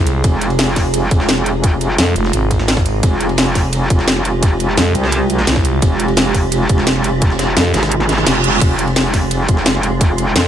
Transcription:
Already playing: C2 C3 G#3 F4 G#4
0.07 closed hi-hat, ride
0.24 F1, kick, closed hi-hat, ride
0.41 closed hi-hat, ride
0.50 ride
0.59 snare, closed hi-hat, ride
0.76 kick, snare, closed hi-hat, open hi-hat
0.94 closed hi-hat, ride
1.11 F1, kick, closed hi-hat, ride
1.20 snare
1.29 snare, closed hi-hat, ride
1.37 snare
1.46 closed hi-hat, ride
1.64 kick, closed hi-hat, ride
1.81 closed hi-hat, ride
1.98 F2, snare, closed hi-hat, ride
2.16 F1, closed hi-hat, ride
2.25 snare
2.33 G#1, closed hi-hat, ride
2.51 kick, closed hi-hat, ride
2.59 snare
2.68 snare, closed hi-hat, ride
2.77 kick, snare
2.86 closed hi-hat, ride
3.03 F1 G4, kick, closed hi-hat, ride
3.21 closed hi-hat, ride
3.29 ride
3.38 snare, closed hi-hat, ride
3.55 kick, snare, closed hi-hat, open hi-hat
3.73 closed hi-hat, ride
3.90 F1, kick, closed hi-hat, ride
3.99 snare
4.08 snare, closed hi-hat, ride
4.16 snare
4.25 closed hi-hat, ride
4.43 kick, closed hi-hat, ride
4.60 closed hi-hat, ride
4.77 F2, snare, closed hi-hat, ride
4.95 C2, closed hi-hat, ride
5.04 snare
5.12 closed hi-hat, ride
5.30 closed hi-hat, ride
5.39 snare
5.47 C2, snare, closed hi-hat, ride
5.56 kick, snare
5.65 closed hi-hat, ride
5.82 F1, kick, closed hi-hat, ride
6.00 closed hi-hat, ride
6.08 ride
6.17 snare, closed hi-hat, ride
6.34 kick, closed hi-hat, open hi-hat
6.52 closed hi-hat, ride
6.69 F1, kick, closed hi-hat, ride
6.78 snare
6.87 snare, closed hi-hat, ride
6.96 snare
7.04 closed hi-hat, ride
7.22 kick, closed hi-hat, ride
7.30 snare
7.39 snare, closed hi-hat, ride
7.57 F2, snare, closed hi-hat, ride
7.74 G#1, snare, closed hi-hat, ride
7.83 snare, ride
7.92 closed hi-hat, reverse cymbal
8.00 snare
8.09 snare, closed hi-hat, ride
8.18 snare
8.26 F1, snare, closed hi-hat, ride
8.35 ride
8.44 closed hi-hat
8.61 F1 G#4, kick, closed hi-hat, ride, crash
8.79 closed hi-hat, ride
8.88 ride
8.96 snare, closed hi-hat, ride
9.14 kick, snare, closed hi-hat, open hi-hat
9.31 closed hi-hat, ride
9.49 F1, kick, closed hi-hat, ride
9.57 snare
9.66 snare, closed hi-hat, ride
9.75 snare
9.83 closed hi-hat, ride
10.01 kick, closed hi-hat, ride
10.18 closed hi-hat, ride
10.36 F2, snare, closed hi-hat, ride

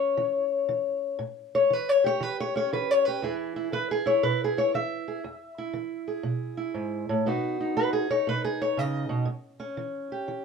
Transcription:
Already playing: E3 C#4 C#5
0.17 E3
0.69 E3
1.19 A2
1.55 C#5
1.70 E3 B4
1.89 C#5
2.04 G4 C#5
2.21 E3 B4
2.40 C#5
2.56 C#4 C#5
2.73 E3 B4
2.91 C#5
3.05 G4 B4
3.22 E2 E3 E4 G#4
3.56 E4
3.72 E3 B4
3.91 G#4
4.06 E4 C#5
4.23 B2 B4
4.44 G#4
4.57 E4 C#5
4.74 E3 E5
5.08 G#4
5.24 E2
5.58 E4
5.73 E3
6.08 G#4
6.23 B2
6.57 E4
6.74 G#2
7.09 A2
7.26 B2 B3 D#4 F#4
7.61 D#4
7.77 B3 B4
7.93 G#4
8.10 D#4 C#5
8.27 B2 B4
8.44 G#4
8.62 C#5
8.77 C#3 D#5
9.09 B2
9.25 A2
9.60 C#4
9.77 E3
10.12 G4
10.28 E3

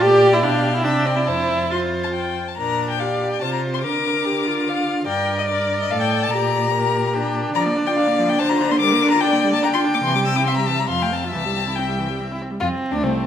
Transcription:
0.01 A#2 G4 D5 G5
0.33 E4
0.42 B2 D4 F5 G5
0.75 E4
0.84 C3 D4 E5 G5
1.05 C4 D5
1.16 E4
1.27 F2 E4 C5 A5
1.71 F4 C5 C6
2.04 A5
2.13 G5
2.48 A5
2.58 A#2 D4 A#4 A#5
2.90 G5
2.99 G4 D5 F5
3.32 G5
3.41 C3 F4 C5 A5
3.53 A#5
3.74 C6
3.82 D3 A#4 D6
4.25 G4
4.46 F4
4.69 F5
5.07 G2 A#4 D5 G5
5.38 D#5
5.48 A#4 D5
5.81 D#5
5.91 A2 A4 F5
6.02 G5
6.23 A5
6.30 A#2 G4 A#5
6.54 G4
6.73 A#4
7.14 D4 G4
7.55 D3 F3 D5 A#5
7.66 A#3
7.76 D4
7.86 F4 G5
7.95 D4 F5
8.07 A#3
8.19 F3
8.28 A#3 G5
8.39 D4 C5 A5
8.49 F4 A#5
8.60 D4
8.71 A#3 C6
8.80 G3 A#4 D6
8.92 A#3
9.03 D4
9.11 F4 A#5
9.21 D4 D5 G5
9.32 A#3
9.44 G3
9.53 A#3 A5
9.63 D4 G5 A#5
9.73 F4 C6
9.84 D4
9.94 A#3 D6
10.04 C3 E3 C6
10.15 G3 D6
10.25 C4 E6
10.35 E4 D6
10.45 C4 E5 C6
10.57 G3 A#5
10.67 E3 A5
10.79 G3 A#5
10.89 F2 F3 F5 C6
11.02 A3 G5
11.12 C4 A5
11.24 F4
11.32 C2 E3 E5 A5
11.45 G3
11.56 C4
11.67 E4
11.76 C4 G5
11.88 G3
11.99 E3
12.09 G3
12.20 C4
12.32 E4
12.41 C4
12.51 G3
12.60 F2 C4 F4
12.91 D2 D4
13.02 C2 A3 C4

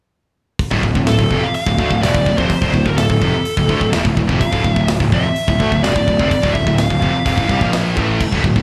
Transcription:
0.59 kick, open hi-hat
0.71 D1 D2 A2, kick
0.83 D1 D2 A2, kick
0.95 D1 D2 A2, kick
1.07 A4, snare, open hi-hat
1.19 D1 D2 A2, kick
1.31 F1 F2 C3, kick
1.44 F5
1.54 F5, open hi-hat
1.67 D1 D2 A2, kick
1.78 D2 D3 A3, kick
1.91 D1 D2 A2, kick
2.03 E1 E2 B2 D5, snare, open hi-hat
2.14 D1 D2 A2, kick
2.26 D1 D2 A2, kick
2.38 F1 F2 C3 C5, kick
2.50 kick, open hi-hat
2.62 D1 D2 A2, kick
2.74 D1 D2 A2, kick
2.85 D1 D2 A2 A#4, kick
2.97 A4, snare, open hi-hat
3.10 D1 D2 A2, kick
3.21 F1 F2 C3, kick
3.45 open hi-hat
3.57 D1 D2 A2, kick
3.68 D2 D3 A3, kick
3.81 D1 D2 A2, kick
3.93 E1 E2 B2, snare, open hi-hat
4.05 D1 D2 A2, kick
4.16 D1 D2 A2, kick
4.27 F1 F2 C3, kick
4.41 F5, kick, open hi-hat
4.51 D1 D2 A2, kick
4.64 D1 D2 A2, kick
4.74 D1 D2 A2 E5, kick
4.88 snare, open hi-hat
5.00 D1 D2 A2, kick
5.12 F1 F2 C3 E5, kick
5.36 open hi-hat
5.48 D1 D2 A2, kick
5.60 D2 D3 A3, kick
5.72 D1 D2 A2, kick
5.83 E1 E2 B2 D5, snare, open hi-hat
5.96 D1 D2 A2, kick
6.08 D1 D2 A2, kick
6.19 F1 F2 C3, kick
6.29 D5, kick, open hi-hat
6.43 D1 D2 A2, kick
6.53 D1 D2 A2 E5, kick
6.67 D1 D2 A2, kick
6.76 F5, snare, open hi-hat
6.90 D1 D2 A2, kick
7.02 F1 F2 C3, kick
7.26 F1 F2 C3, kick, open hi-hat
7.37 A1 A2 E3, kick
7.49 C2 C3 G3, kick
7.61 A#1 A#2 F3 A#3, kick
7.73 snare, open hi-hat
7.96 A1 A2 E3 A3, kick
8.20 kick, crash
8.32 D1 D2 A2, kick
8.44 D1 D2 A2, kick
8.56 D1 D2 A2, kick

